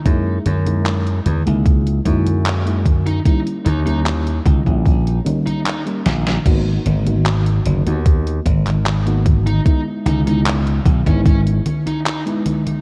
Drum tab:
CC |----------------|----------------|x---------------|----------------|
HH |x-xxxxxxxxxxxxxx|xxxxxxxxxxxxxxxx|x-xxxxxxxxxxxxxx|x-xxxxxxxxxxxxxx|
CP |----x-------x---|----x-------x---|----x------xx---|----x-------x---|
SD |----------------|--------------oo|----------------|----------------|
CG |o-ooo-ooo-ooo-oo|o-ooo-ooo-ooo-oo|o-ooo-ooo-ooo-oo|o-ooo-ooo-ooo-oo|
BD |o-------o-o---o-|o-----ooo-------|o-------o-o---o-|o-----ooo-------|